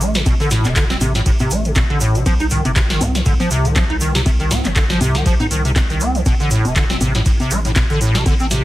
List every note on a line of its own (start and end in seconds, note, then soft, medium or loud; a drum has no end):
0.00 0.23 A1 medium
0.00 0.17 A3 medium
0.00 open hi-hat medium
0.00 shaker loud
0.15 0.21 C3 loud
0.15 snare medium
0.15 closed hi-hat medium
0.15 shaker soft
0.26 0.61 A1 loud
0.26 0.34 B2 medium
0.26 kick loud
0.26 closed hi-hat medium
0.26 ride medium
0.26 high conga medium
0.26 shaker soft
0.40 0.49 D3 loud
0.40 closed hi-hat soft
0.40 shaker soft
0.51 0.67 A2 loud
0.51 snare medium
0.51 mid tom loud
0.51 open hi-hat loud
0.51 shaker medium
0.64 0.98 E1 loud
0.64 0.74 C3 medium
0.64 clap soft
0.64 closed hi-hat medium
0.64 high conga soft
0.64 shaker soft
0.76 0.84 D3 loud
0.76 kick loud
0.76 clap loud
0.76 closed hi-hat medium
0.76 ride medium
0.76 shaker medium
0.90 0.96 C4 medium
0.90 snare medium
0.90 closed hi-hat soft
0.90 shaker soft
1.01 1.22 A1 loud
1.01 1.13 C3 medium
1.01 mid tom loud
1.01 open hi-hat loud
1.01 high conga medium
1.01 shaker medium
1.15 1.21 A2 medium
1.15 snare medium
1.15 closed hi-hat medium
1.15 shaker soft
1.26 1.38 A1 medium
1.26 1.31 A2 medium
1.26 kick loud
1.26 closed hi-hat medium
1.26 ride medium
1.26 shaker medium
1.39 1.52 C3 medium
1.39 closed hi-hat soft
1.39 mid tom loud
1.39 high conga soft
1.39 shaker soft
1.51 1.86 A1 loud
1.51 1.67 A3 medium
1.51 open hi-hat loud
1.51 shaker loud
1.65 1.71 C3 loud
1.65 closed hi-hat medium
1.65 shaker soft
1.75 1.84 B2 medium
1.75 kick loud
1.75 clap loud
1.75 closed hi-hat medium
1.75 ride medium
1.75 high conga medium
1.75 shaker medium
1.90 2.23 A1 medium
1.90 1.99 D3 loud
1.90 closed hi-hat soft
2.01 2.17 A2 loud
2.01 open hi-hat medium
2.01 shaker loud
2.15 2.24 C3 medium
2.15 closed hi-hat medium
2.15 shaker soft
2.26 2.61 C2 loud
2.26 2.34 F3 loud
2.26 kick loud
2.26 closed hi-hat medium
2.26 ride medium
2.26 high conga medium
2.26 shaker medium
2.40 2.46 D#4 medium
2.40 closed hi-hat soft
2.40 shaker soft
2.50 2.63 D#3 medium
2.50 mid tom loud
2.50 open hi-hat loud
2.50 shaker medium
2.65 2.98 G1 loud
2.65 2.71 C3 medium
2.65 closed hi-hat medium
2.65 high conga soft
2.65 shaker soft
2.76 2.81 C3 medium
2.76 kick loud
2.76 clap loud
2.76 closed hi-hat medium
2.76 ride medium
2.76 shaker medium
2.90 3.02 D#3 medium
2.90 snare medium
2.90 closed hi-hat soft
2.90 shaker soft
3.01 3.22 C2 loud
3.01 3.16 C4 medium
3.01 mid tom loud
3.01 open hi-hat loud
3.01 high conga medium
3.01 shaker medium
3.15 3.21 D#3 loud
3.15 snare medium
3.15 closed hi-hat medium
3.15 shaker soft
3.25 3.38 C2 medium
3.25 3.34 D3 medium
3.25 kick loud
3.25 closed hi-hat medium
3.25 mid tom loud
3.25 ride medium
3.25 shaker medium
3.40 3.49 F3 loud
3.40 closed hi-hat soft
3.40 high conga soft
3.40 shaker soft
3.51 3.86 C2 loud
3.51 3.66 C3 loud
3.51 open hi-hat loud
3.51 shaker medium
3.65 3.74 D#3 medium
3.65 closed hi-hat medium
3.65 mid tom medium
3.65 shaker soft
3.76 3.84 F3 loud
3.76 kick loud
3.76 clap loud
3.76 closed hi-hat medium
3.76 ride medium
3.76 high conga medium
3.76 shaker medium
3.90 4.23 C2 medium
3.90 3.96 D#4 medium
3.90 closed hi-hat soft
4.01 4.12 D#3 medium
4.01 open hi-hat loud
4.01 shaker loud
4.15 4.21 C3 medium
4.15 snare medium
4.15 closed hi-hat medium
4.15 shaker soft
4.26 4.61 C2 loud
4.26 4.30 C3 medium
4.26 kick loud
4.26 closed hi-hat medium
4.26 ride medium
4.26 high conga medium
4.26 shaker soft
4.40 4.52 D#3 medium
4.40 closed hi-hat soft
4.40 shaker soft
4.51 4.66 C4 medium
4.51 snare medium
4.51 mid tom loud
4.51 open hi-hat loud
4.51 shaker loud
4.64 4.98 G1 loud
4.64 4.71 D#3 loud
4.64 clap soft
4.64 closed hi-hat soft
4.64 high conga soft
4.64 shaker soft
4.76 4.84 D3 medium
4.76 kick loud
4.76 clap loud
4.76 closed hi-hat medium
4.76 ride medium
4.76 shaker medium
4.90 4.99 F3 loud
4.90 snare medium
4.90 closed hi-hat soft
4.90 shaker soft
5.01 5.22 C2 loud
5.01 5.16 C3 loud
5.01 mid tom medium
5.01 open hi-hat medium
5.01 high conga medium
5.01 shaker medium
5.15 5.24 D#3 medium
5.15 snare medium
5.15 closed hi-hat soft
5.15 shaker soft
5.26 5.38 C2 medium
5.26 5.34 F3 loud
5.26 kick loud
5.26 closed hi-hat medium
5.26 ride medium
5.26 shaker medium
5.40 5.46 D#4 medium
5.40 closed hi-hat soft
5.40 mid tom loud
5.40 high conga soft
5.40 shaker soft
5.51 5.86 C2 loud
5.51 5.63 D#3 medium
5.51 open hi-hat loud
5.51 shaker loud
5.65 5.71 C3 medium
5.65 closed hi-hat medium
5.65 shaker soft
5.76 5.81 C3 medium
5.76 kick loud
5.76 clap loud
5.76 closed hi-hat soft
5.76 ride medium
5.76 high conga medium
5.76 shaker medium
5.90 6.23 C2 medium
5.90 6.02 D#3 medium
5.90 closed hi-hat soft
5.90 shaker soft
6.00 6.17 C4 medium
6.00 open hi-hat medium
6.00 shaker medium
6.15 6.21 D#3 loud
6.15 closed hi-hat medium
6.15 shaker soft
6.26 6.61 A1 loud
6.26 6.34 B2 medium
6.26 kick loud
6.26 closed hi-hat medium
6.26 ride medium
6.26 high conga medium
6.26 shaker medium
6.40 6.49 D3 loud
6.40 closed hi-hat soft
6.40 shaker soft
6.51 6.67 A2 loud
6.51 mid tom loud
6.51 open hi-hat loud
6.51 shaker medium
6.65 6.98 E1 loud
6.65 6.74 C3 medium
6.65 closed hi-hat medium
6.65 high conga soft
6.65 shaker soft
6.76 6.84 D3 loud
6.76 kick loud
6.76 clap loud
6.76 closed hi-hat medium
6.76 ride medium
6.76 shaker medium
6.90 6.96 C4 medium
6.90 snare medium
6.90 closed hi-hat soft
6.90 shaker soft
7.01 7.22 A1 loud
7.01 7.13 C3 medium
7.01 mid tom medium
7.01 open hi-hat medium
7.01 high conga medium
7.01 shaker medium
7.15 7.21 A2 medium
7.15 snare medium
7.15 closed hi-hat medium
7.15 shaker soft
7.26 7.38 A1 medium
7.26 7.31 A2 medium
7.26 kick loud
7.26 closed hi-hat medium
7.26 mid tom loud
7.26 ride medium
7.26 shaker soft
7.40 7.53 C3 medium
7.40 closed hi-hat soft
7.40 high conga soft
7.40 shaker soft
7.51 7.86 A1 loud
7.51 7.59 A3 medium
7.51 open hi-hat loud
7.51 shaker loud
7.65 7.71 A2 medium
7.65 closed hi-hat medium
7.65 mid tom medium
7.65 shaker soft
7.76 7.84 B2 medium
7.76 kick loud
7.76 clap loud
7.76 closed hi-hat medium
7.76 ride medium
7.76 high conga medium
7.76 shaker soft
7.90 8.23 A1 medium
7.90 7.99 D3 loud
7.90 closed hi-hat soft
8.01 8.17 A2 loud
8.01 open hi-hat medium
8.01 shaker loud
8.15 8.24 C3 medium
8.15 snare medium
8.15 closed hi-hat medium
8.15 shaker soft
8.26 8.61 A1 loud
8.26 8.34 D3 loud
8.26 kick loud
8.26 closed hi-hat medium
8.26 ride medium
8.26 high conga medium
8.26 shaker soft
8.39 8.46 C4 medium
8.39 closed hi-hat soft
8.39 shaker soft
8.51 8.63 C3 medium
8.51 snare medium
8.51 mid tom medium
8.51 open hi-hat loud
8.51 shaker medium